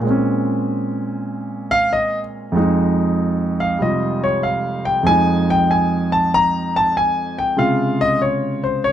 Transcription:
0.00 2.52 A#2 medium
0.00 2.54 G#3 medium
0.07 2.56 C4 medium
0.07 2.58 C#4 medium
1.71 1.91 F5 loud
1.93 2.18 D#5 medium
2.52 5.02 F2 medium
2.52 5.03 F3 medium
2.52 5.05 G#3 medium
2.57 5.07 D#4 medium
3.60 3.79 F5 medium
3.79 5.06 C3 soft
3.79 5.05 G3 soft
3.79 5.06 F4 soft
3.79 4.22 D#5 medium
4.24 4.42 C#5 medium
4.43 4.84 F5 medium
4.85 5.05 G5 medium
5.03 7.55 F2 medium
5.03 7.56 F3 medium
5.03 7.55 G#3 medium
5.03 5.47 G#5 loud
5.08 7.58 D#4 medium
5.50 5.69 G5 loud
5.71 6.11 G#5 medium
6.12 6.31 A5 medium
6.34 6.74 A#5 loud
6.76 6.94 A5 medium
6.97 7.37 G#5 medium
7.38 7.57 G5 medium
7.57 8.92 C3 soft
7.57 8.92 C#3 medium
7.57 8.92 G#3 soft
7.57 8.92 F4 medium
7.57 7.99 F5 medium
8.01 8.19 D#5 loud
8.22 8.62 C#5 medium
8.64 8.82 C5 medium
8.84 8.92 C#5 medium

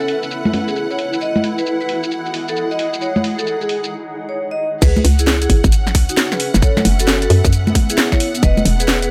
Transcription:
0.00 2.79 E4 medium
0.00 0.99 A4 medium
0.00 0.12 A4 medium
0.00 1.72 B4 medium
0.00 3.92 F#5 medium
0.00 shaker soft
0.08 open hi-hat loud
0.23 shaker medium
0.31 shaker medium
0.45 high conga medium
0.45 shaker soft
0.54 open hi-hat medium
0.54 high conga medium
0.68 0.75 G#4 medium
0.68 shaker medium
0.76 shaker soft
0.91 1.02 C#5 medium
0.91 shaker soft
0.99 open hi-hat loud
1.13 shaker medium
1.21 1.38 D#5 medium
1.21 shaker soft
1.36 high conga medium
1.36 shaker soft
1.44 3.45 G#4 medium
1.44 open hi-hat loud
1.58 1.65 B4 medium
1.58 3.63 D#5 medium
1.58 shaker medium
1.66 shaker medium
1.81 1.92 B4 medium
1.81 shaker soft
1.89 open hi-hat loud
2.03 shaker medium
2.11 shaker soft
2.26 shaker soft
2.34 open hi-hat medium
2.48 2.55 A4 medium
2.48 shaker medium
2.56 shaker soft
2.71 2.83 D#5 medium
2.71 shaker soft
2.79 open hi-hat loud
2.93 shaker medium
3.01 3.18 C#5 medium
3.01 shaker soft
3.16 high conga medium
3.16 shaker soft
3.24 open hi-hat loud
3.39 3.45 A4 medium
3.39 shaker medium
3.47 shaker soft
3.61 3.73 G#4 medium
3.61 shaker soft
3.69 open hi-hat loud
3.84 shaker medium
4.29 4.35 C#5 medium
4.51 4.63 D#5 medium
4.82 5.02 C#2 loud
4.82 7.13 C#4 medium
4.82 4.99 G#4 medium
4.82 4.99 B4 medium
4.82 9.11 F#5 medium
4.82 kick loud
4.82 closed hi-hat medium
4.82 crash loud
4.82 shaker soft
4.97 high conga medium
4.97 shaker soft
5.05 5.47 C#2 medium
5.05 open hi-hat loud
5.19 5.26 E4 medium
5.19 5.26 G#4 medium
5.19 closed hi-hat medium
5.19 shaker medium
5.27 snare loud
5.27 shaker medium
5.42 5.53 E4 medium
5.42 5.53 G#4 loud
5.42 closed hi-hat medium
5.42 shaker soft
5.50 5.62 G#1 medium
5.50 6.98 B4 medium
5.50 kick medium
5.50 open hi-hat loud
5.54 8.21 E5 medium
5.64 5.96 G#1 medium
5.64 kick loud
5.64 shaker medium
5.72 closed hi-hat medium
5.72 shaker soft
5.87 snare medium
5.87 shaker soft
5.95 6.07 C#2 medium
5.95 kick loud
5.95 open hi-hat loud
6.09 6.16 D#4 medium
6.09 6.16 F#4 medium
6.09 closed hi-hat medium
6.09 shaker medium
6.17 snare loud
6.17 closed hi-hat medium
6.17 shaker medium
6.32 6.43 G#4 medium
6.32 6.43 B4 medium
6.32 snare medium
6.32 shaker soft
6.40 8.94 B3 medium
6.40 open hi-hat loud
6.54 6.61 F#1 medium
6.54 snare medium
6.54 closed hi-hat soft
6.54 shaker medium
6.62 6.79 A4 medium
6.62 6.79 C#5 loud
6.62 kick loud
6.62 closed hi-hat medium
6.62 shaker soft
6.77 snare medium
6.77 high conga medium
6.77 shaker soft
6.85 7.28 F#1 medium
6.85 open hi-hat loud
7.00 7.06 F#4 medium
7.00 7.06 A4 medium
7.00 closed hi-hat medium
7.00 shaker medium
7.08 snare loud
7.08 shaker soft
7.22 7.34 F#4 medium
7.22 7.34 A4 loud
7.22 closed hi-hat medium
7.22 shaker soft
7.30 7.42 F#2 medium
7.30 open hi-hat loud
7.45 7.73 F#2 medium
7.45 kick loud
7.45 shaker medium
7.53 closed hi-hat medium
7.53 shaker soft
7.67 high conga medium
7.67 shaker soft
7.75 kick loud
7.75 open hi-hat loud
7.75 high conga medium
7.90 7.96 E4 medium
7.90 7.96 G#4 medium
7.90 closed hi-hat medium
7.90 shaker medium
7.98 snare loud
7.98 closed hi-hat medium
7.98 shaker soft
8.12 8.24 E4 medium
8.12 8.24 C#5 medium
8.12 kick medium
8.12 snare medium
8.12 shaker soft
8.20 9.11 D#4 medium
8.20 open hi-hat loud
8.35 closed hi-hat soft
8.35 shaker medium
8.43 8.63 E1 loud
8.43 8.59 B4 medium
8.43 8.59 D#5 loud
8.43 kick loud
8.43 closed hi-hat medium
8.43 shaker soft
8.57 high conga medium
8.57 shaker soft
8.63 9.08 E1 medium
8.63 9.11 G#4 medium
8.63 open hi-hat loud
8.80 8.87 G#4 medium
8.80 8.87 B4 medium
8.80 closed hi-hat medium
8.80 shaker medium
8.88 snare loud
8.88 shaker medium
9.02 9.11 G#4 medium
9.02 9.11 B4 loud
9.02 closed hi-hat medium
9.02 shaker soft

